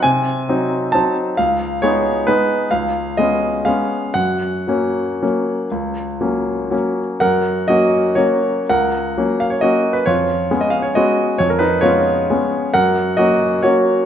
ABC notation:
X:1
M:3/4
L:1/16
Q:1/4=130
K:F#
V:1 name="Grand piano"
g8 =a2 z2 | e4 c4 B4 | e4 d4 e4 | f12- |
f8- f2 z2 | [Af]4 [Fd]4 [Fc]4 | [Af]6 e c [Fd]3 B | [Ec]4- [Ec] d e c [Fd]4 |
c A [DB]2 [Ec]8 | [Af]4 [Fd]4 [Fc]4 |]
V:2 name="Grand piano"
=C,4 [_G,=C_E]4 [G,CE]4 | C,,4 [G,B,D]4 [G,B,D]4 | C,,4 [G,B,C]4 [G,B,C]4 | F,,4 [F,A,C]4 [F,A,C]4 |
C,,4 [F,A,C]4 [F,A,C]4 | F,,4 [F,A,C]4 [F,A,C]4 | C,,4 [F,A,C]4 [F,A,C]4 | E,,4 [G,B,C]4 [G,B,C]4 |
E,,4 [G,B,C]4 [G,B,C]4 | F,,4 [F,A,C]4 [F,A,C]4 |]